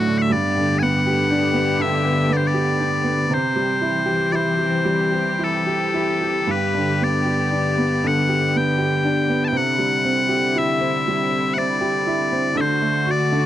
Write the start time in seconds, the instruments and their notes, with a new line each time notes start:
Already playing: upright piano D2 A2 D3 F#3 A3 D4, string section D3 A3 F#4, bagpipes F#4
0.07 upright piano D3
0.18 bagpipes E5 F#5
0.29 upright piano G2, string section D3 B3 G4, bagpipes D5
0.57 upright piano D3
0.79 upright piano B3, bagpipes F#5 G#5
1.06 upright piano G4
1.30 upright piano D4
1.54 upright piano B3
1.80 upright piano D3, bagpipes E5
2.05 upright piano B4
2.29 upright piano B3, bagpipes D5
2.37 bagpipes C5
2.47 bagpipes D5
2.54 upright piano G4
2.79 upright piano D4
3.04 upright piano B3
3.30 upright piano C3, string section E3 C4 G4, bagpipes C5
3.56 upright piano G3
3.81 upright piano E4
4.06 upright piano G4
4.32 upright piano E4, bagpipes C5 D5
4.59 upright piano G4
4.85 upright piano G3
5.12 upright piano G4
5.39 upright piano E4
5.44 bagpipes A4
5.67 upright piano G4
5.94 upright piano E4
6.21 upright piano G4
6.46 upright piano G2, string section D3 B3
6.51 bagpipes B4
6.74 upright piano D3
7.01 upright piano B3, bagpipes D5
7.25 upright piano G4
7.51 upright piano D4
7.78 upright piano B3
8.04 upright piano D3, bagpipes F#5
8.29 upright piano G4
8.56 upright piano B3, bagpipes G5
8.78 upright piano G4
9.04 upright piano D4
9.28 upright piano B3
9.45 bagpipes G5 A5
9.52 upright piano C3, string section C4 E4
9.57 bagpipes F#5
9.78 upright piano G3
10.05 upright piano C4
10.29 upright piano G4
10.56 upright piano E4, bagpipes E5
10.80 upright piano C4
11.08 upright piano G3
11.31 upright piano C5
11.54 upright piano C4, bagpipes F#5
11.58 bagpipes D5
11.81 upright piano G4
12.07 upright piano E4
12.32 upright piano C4
12.55 upright piano D3, string section D3 A3 F#4, bagpipes E5
12.61 bagpipes C5
12.81 upright piano A3
13.07 upright piano F#4
13.11 bagpipes D5
13.32 upright piano D3